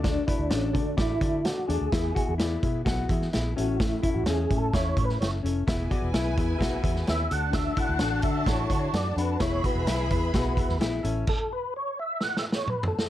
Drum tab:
CC |------------------------------------------------|------------------------------------------------|------------------------------------------------|------------------------------------------------|
HH |x-----x-----x-----x-----x-----x-----x-----x-----|x-----x-----x-----x-----x-----x-----x-----x-----|x-----x-----x-----x-----x-----x-----x-----x-----|x-----x-----x-----x-----x-----x-----x-----x-----|
SD |o-----------o-----------o-----------o-----------|o-----------o-----------o--------o--o-----------|o-----------o-----------o--------o--o-----------|o-----------o-----------o--------o--o-----------|
T2 |------------------------------------------------|------------------------------------------------|------------------------------------------------|------------------------------------------------|
FT |------------------------------------------------|------------------------------------------------|------------------------------------------------|------------------------------------------------|
BD |o-----o-----------o-----o-----o-----------------|o-----o-----------o-----o-----o-----------------|o-----o-----------o-----o-----o-----------------|o-----o-----------o-----o-----o-----------------|

CC |------------------------------------------------|------------------------------------------------|x-----------------------------------------------|
HH |x-----x-----x-----x-----x-----x-----x-----x-----|x-----x-----x-----x-----x-----x-----x-----x-----|------------------------------------------------|
SD |o-----------o-----------o-----------o-----------|o-----------o-----------o--------o--o-----------|------------------------o---o---o-----------o---|
T2 |------------------------------------------------|------------------------------------------------|------------------------------------o-----------|
FT |------------------------------------------------|------------------------------------------------|----------------------------------------o-------|
BD |o-----o-----------o-----o-----o-----------------|o-----o-----------o-----o-----o-----------------|o-----------------------------------------------|